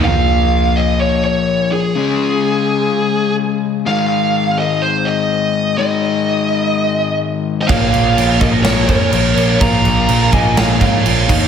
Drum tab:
CC |--------|--------|--------|--------|
SD |--------|--------|--------|--------|
BD |--------|--------|--------|--------|

CC |xxxxxxxx|xxxxxxxx|
SD |----o---|----o---|
BD |o--o-o--|o--o-o-o|